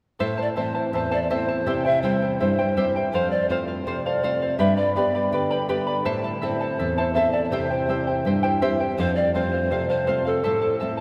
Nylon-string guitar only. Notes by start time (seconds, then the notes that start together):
0.20 A2
0.57 E3 A3 C4
0.93 E2
1.30 E3 A3 C4
1.67 C3
2.03 G3 C4 E4
2.40 G2
2.77 G3 C4 E4
3.13 F2
3.50 A3 C4 F4
3.87 C3
4.24 A3 C4 F4
4.59 G2
4.96 B3 D4 G4
5.32 D3
5.69 B3 D4 G4
6.06 A2
6.42 C4 E4 A4
6.80 E2
7.16 C4 E4 A4
7.52 C3
7.88 C4 E4 G4
8.25 G2
8.62 C4 E4 G4
8.98 F2
9.35 A3 C4 F4
9.72 C3
10.08 A3 C4 F4
10.46 A2
10.81 A3 C4 E4